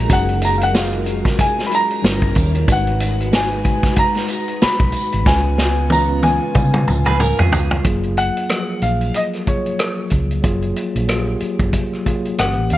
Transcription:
Already playing: string machine F#3 D#4 G#4 A#4, tine electric piano G#3 F4 F#4 A4 A#4, grand piano A#5
0.07 fingered electric bass F#1, tine electric piano G#3 C#4 F#4 G#4, kick, closed hi-hat, tambourine
0.13 grand piano F#5
0.29 closed hi-hat
0.42 grand piano A#5, closed hi-hat, tambourine
0.58 grand piano F5, closed hi-hat
0.63 grand piano F#5
0.73 tine electric piano G#3 F4 F#4 G#4, grand piano F5, snare, tambourine
0.83 tine electric piano A#4
0.93 closed hi-hat
1.06 closed hi-hat, tambourine
1.25 kick, snare, closed hi-hat
1.39 grand piano G#5, kick, closed hi-hat, tambourine
1.59 snare
1.66 grand piano B5
1.71 grand piano A#5, closed hi-hat, tambourine
1.91 closed hi-hat
2.02 fingered electric bass G1, tine electric piano G3 C#4 E4 A#4, string machine G3 C#4 E4 A#4, snare, tambourine
2.22 kick, closed hi-hat
2.35 fingered electric bass D#2, kick, closed hi-hat, tambourine
2.55 closed hi-hat
2.67 fingered electric bass G#1, tine electric piano G#3 D#4 F#4 B4, string machine G#3 F#4 B4, kick, closed hi-hat, tambourine
2.72 grand piano F#5
2.87 closed hi-hat
3.00 closed hi-hat, tambourine
3.20 closed hi-hat
3.32 tine electric piano G#3 D#4 F#4 B4, grand piano G#5, snare, tambourine
3.51 closed hi-hat
3.64 kick, closed hi-hat
3.83 kick, snare, closed hi-hat
3.96 grand piano A#5, kick, closed hi-hat
4.15 snare, closed hi-hat
4.28 closed hi-hat, tambourine
4.48 closed hi-hat
4.62 grand piano B5, muted fingered electric bass stroke, snare, tambourine
4.79 fingered electric bass B1, kick, closed hi-hat
4.92 closed hi-hat, tambourine
5.12 fingered electric bass G#1, closed hi-hat
5.26 fingered electric bass C#2, string machine C#3 B3 F4, tine electric piano G#3 C#4 F4 B4, grand piano G#5, kick, snare, tambourine
5.58 snare, tambourine
5.90 tine electric piano G#3 C#4 F4 B4, grand piano A#5, high tom, tambourine
6.23 grand piano G#5, high tom, tambourine
6.55 fingered electric bass C#3, kick, mid tom, tambourine
6.74 mid tom
6.88 fingered electric bass C#2, mid tom, tambourine
7.06 clean electric guitar G#4 B4, mid tom
7.20 clean electric guitar A#4, mid tom, tambourine
7.39 fingered electric bass F2, clean electric guitar F4 G#4, floor tom
7.52 fingered electric bass C#2, floor tom, tambourine
7.71 floor tom
7.83 fingered electric bass F#1, tine electric piano F#3 A#3 F4 G#4, kick, closed hi-hat
8.03 closed hi-hat
8.17 grand piano F#5, closed hi-hat
8.37 closed hi-hat
8.49 tine electric piano F3 F#3 A#3 G#4, cross-stick, closed hi-hat
8.82 fingered electric bass A#1, grand piano F5, closed hi-hat
9.01 closed hi-hat
9.14 grand piano D#5, closed hi-hat
9.33 cross-stick, closed hi-hat
9.46 tine electric piano F#3 A#3 F4 G#4, grand piano C#5, kick, closed hi-hat
9.66 closed hi-hat
9.79 cross-stick, closed hi-hat
10.10 fingered electric bass C#2, kick, closed hi-hat
10.31 closed hi-hat
10.42 fingered electric bass F#1, tine electric piano F#3 A#3 F4 G#4, kick, closed hi-hat
10.62 closed hi-hat
10.76 closed hi-hat
10.96 fingered electric bass A#1, closed hi-hat
11.07 tine electric piano F#3 A#3 F4 G4, cross-stick, closed hi-hat
11.17 tine electric piano G#4
11.40 muted fingered electric bass stroke, closed hi-hat
11.59 fingered electric bass F#1, kick, closed hi-hat
11.73 kick, closed hi-hat
11.93 cross-stick
12.05 tine electric piano F#3 A#3 F4 G#4, kick, closed hi-hat
12.25 closed hi-hat
12.38 fingered electric bass G1, tine electric piano E3 A#3 C#4 G4, grand piano F#5, cross-stick, closed hi-hat
12.58 fingered electric bass A1
12.70 fingered electric bass D#2, grand piano F5, closed hi-hat

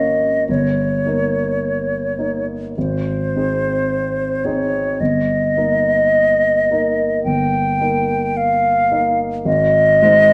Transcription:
Already playing: grand piano G#1 A#3 C#4 C#5, flute D#5
0.49 grand piano G1, flute C#5
1.05 grand piano A#3 D#4 A#4
2.19 grand piano A#3 D#4 A#4
2.77 grand piano G#1, flute C5
3.36 grand piano C4 D#4 G#4
4.44 grand piano C4 D#4 G#4, flute C#5
5.00 grand piano G1, flute D#5
5.57 grand piano A#3 D#4 A#4
6.71 grand piano A#3 D#4 A#4
7.24 grand piano G1, flute G5
7.80 grand piano A#3 D#4 A#4
8.37 flute F5
8.92 grand piano A#3 D#4 A#4
9.45 grand piano G#1, flute D#5
10.02 grand piano G#3 D#4 C5

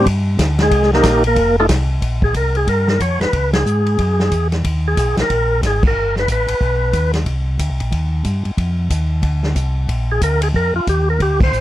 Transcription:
0.06 tonewheel organ G2, kick, ride
0.39 tonewheel organ D2, kick, snare, hi-hat pedal, ride
0.59 tonewheel organ G#4, snare, ride
0.63 tonewheel organ G#3
0.71 tonewheel organ C2, kick, ride
0.82 snare
0.93 tonewheel organ A#3 D#4 G4 A#4, snare
1.03 tonewheel organ A#1, kick, snare, hi-hat pedal, ride
1.24 tonewheel organ A#3 A#4, ride
1.36 tonewheel organ F1, kick, ride
1.60 tonewheel organ A3 D#4 F4 A4
1.69 tonewheel organ C2, kick, snare, hi-hat pedal, ride
2.02 tonewheel organ A#1, kick, ride
2.22 tonewheel organ G#4, kick
2.34 tonewheel organ C2 A#4, kick, hi-hat pedal, ride
2.55 tonewheel organ G#4, ride
2.67 tonewheel organ G2 A#4, kick, ride
2.88 tonewheel organ A#4, snare
3.00 tonewheel organ F2 C#5, kick, hi-hat pedal, ride
3.20 tonewheel organ F2 B4, snare, ride
3.33 tonewheel organ C#2, kick, ride
3.53 tonewheel organ G#4, snare, ride
3.65 tonewheel organ G#2, hi-hat pedal
3.86 ride
3.99 tonewheel organ F#2, kick, ride
4.19 snare
4.32 tonewheel organ E2, kick, hi-hat pedal, ride
4.52 snare, ride
4.64 tonewheel organ D#2, kick, ride
4.88 tonewheel organ G#4
4.97 tonewheel organ B1, kick, hi-hat pedal, ride
5.17 tonewheel organ B1 A#4, snare, ride
5.30 tonewheel organ A#1, kick, ride
5.63 tonewheel organ G#1 G#4, kick, snare, hi-hat pedal, ride
5.83 kick, crash
5.87 tonewheel organ A#4
5.96 tonewheel organ G1
6.16 tonewheel organ B4, snare
6.28 tonewheel organ A1, kick, hi-hat pedal, ride
6.32 tonewheel organ B4
6.48 tonewheel organ A1, ride
6.60 tonewheel organ B1, kick
6.93 tonewheel organ D#2, kick, hi-hat pedal, ride
7.13 snare, ride
7.26 tonewheel organ C2, kick, ride
7.59 tonewheel organ D2, kick, hi-hat pedal, ride
7.70 tonewheel organ C2
7.80 tonewheel organ A#1, ride
7.92 tonewheel organ D#2, kick, ride
8.25 tonewheel organ G2, kick, hi-hat pedal, ride
8.45 tonewheel organ G2, ride
8.57 tonewheel organ F2, kick, ride
8.90 tonewheel organ D#2, kick, hi-hat pedal, ride
9.22 tonewheel organ D2, kick, ride
9.43 snare
9.55 tonewheel organ C2, kick, hi-hat pedal, ride
9.89 tonewheel organ A#1, kick, ride
10.12 tonewheel organ G#4
10.21 tonewheel organ D2 A#4, kick, hi-hat pedal, ride
10.42 tonewheel organ G#4, ride
10.54 tonewheel organ F2 A#4, kick
10.74 tonewheel organ F2 F4
10.87 tonewheel organ D#2 G4, kick, hi-hat pedal, ride
11.10 tonewheel organ A#4
11.20 tonewheel organ D2 G4, kick, ride
11.40 tonewheel organ C5, kick, crash
11.53 tonewheel organ A1, hi-hat pedal

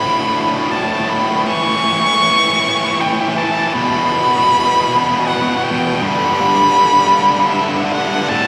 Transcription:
Already playing: violin B5
0.01 distorted electric guitar D2 A2
0.09 distorted electric guitar D2 A2
0.18 distorted electric guitar D2 A2
0.25 distorted electric guitar D2 A2
0.33 distorted electric guitar D2 A2
0.41 distorted electric guitar D2 A2
0.47 distorted electric guitar D2
0.52 distorted electric guitar D2 A2
0.59 distorted electric guitar A2
0.63 distorted electric guitar D2
0.67 distorted electric guitar D2 A2, violin A5
0.75 distorted electric guitar D2 A2
0.83 distorted electric guitar D2 A2
0.92 distorted electric guitar D2 A2
0.99 distorted electric guitar D2 A2
1.05 distorted electric guitar D2 A2, violin B5
1.14 distorted electric guitar D2 A2
1.21 distorted electric guitar D2 A2
1.30 distorted electric guitar D2 A2
1.37 distorted electric guitar D2 A2
1.46 distorted electric guitar A2 E3, violin C#6
1.54 distorted electric guitar A2 E3
1.62 distorted electric guitar A2 E3
1.69 distorted electric guitar A2 E3
1.77 distorted electric guitar A2 E3
1.84 distorted electric guitar A2 E3
1.91 distorted electric guitar A2 E3
1.99 distorted electric guitar A2 E3
2.07 distorted electric guitar A2 E3
2.15 distorted electric guitar A2 E3
2.22 distorted electric guitar A2 E3
2.30 distorted electric guitar A2 E3
2.38 distorted electric guitar A2 E3
2.44 distorted electric guitar A2 E3
2.53 distorted electric guitar A2 E3
2.60 distorted electric guitar A2 E3
2.68 distorted electric guitar A2 E3
2.75 distorted electric guitar A2 E3
2.84 distorted electric guitar A2 E3
2.91 distorted electric guitar A2 E3
2.98 distorted electric guitar A2 E3, violin G5
3.06 distorted electric guitar A2 E3
3.13 distorted electric guitar A2 E3
3.21 distorted electric guitar A2 E3
3.29 distorted electric guitar A2 E3
3.36 distorted electric guitar A2 E3, violin A5
3.43 distorted electric guitar A2 E3
3.51 distorted electric guitar A2 E3
3.59 distorted electric guitar A2 E3
3.67 distorted electric guitar A2 E3
3.74 distorted electric guitar E2 B2, violin B5
3.82 distorted electric guitar E2 B2
3.89 distorted electric guitar E2 B2
3.97 distorted electric guitar E2 B2
4.04 distorted electric guitar E2 B2
4.12 distorted electric guitar E2 B2
4.20 distorted electric guitar E2 B2
4.27 distorted electric guitar E2 B2
4.35 distorted electric guitar E2 B2
4.42 distorted electric guitar E2 B2
4.50 distorted electric guitar E2 B2
4.58 distorted electric guitar E2 B2
4.64 distorted electric guitar E2 B2
4.73 distorted electric guitar E2 B2
4.80 distorted electric guitar E2 B2
4.88 distorted electric guitar E2 B2
4.96 distorted electric guitar E2 B2
5.03 distorted electric guitar E2 B2
5.10 distorted electric guitar E2 B2
5.18 distorted electric guitar E2 B2
5.25 distorted electric guitar E2 B2, violin F#5
5.33 distorted electric guitar E2 B2
5.42 distorted electric guitar E2 B2
5.49 distorted electric guitar E2 B2
5.57 distorted electric guitar E2 B2
5.63 distorted electric guitar E2 B2, violin G5
5.71 distorted electric guitar E2 B2
5.78 distorted electric guitar E2 B2
5.86 distorted electric guitar E2 B2
5.94 distorted electric guitar E2 B2
6.01 distorted electric guitar G2 D3, violin B5
6.08 distorted electric guitar G2 D3
6.16 distorted electric guitar G2 D3
6.24 distorted electric guitar G2 D3
6.32 distorted electric guitar G2 D3
6.40 distorted electric guitar G2 D3
6.48 distorted electric guitar G2 D3
6.55 distorted electric guitar G2 D3
6.62 distorted electric guitar G2 D3
6.70 distorted electric guitar G2 D3
6.78 distorted electric guitar G2 D3
6.85 distorted electric guitar G2 D3
6.93 distorted electric guitar G2 D3
7.00 distorted electric guitar G2 D3
7.08 distorted electric guitar G2 D3
7.15 distorted electric guitar G2 D3
7.23 distorted electric guitar G2 D3
7.31 distorted electric guitar G2 D3
7.39 distorted electric guitar G2 D3
7.45 distorted electric guitar G2 D3
7.51 distorted electric guitar G2 D3, violin E5
7.61 distorted electric guitar G2 D3
7.69 distorted electric guitar G2 D3
7.76 distorted electric guitar G2 D3
7.84 distorted electric guitar G2 D3
7.91 distorted electric guitar G2 D3, violin F#5
7.98 distorted electric guitar G2 D3
8.07 distorted electric guitar G2 D3
8.14 distorted electric guitar G2 D3
8.21 distorted electric guitar G2 D3
8.28 distorted electric guitar D2 A2 D3, violin A5

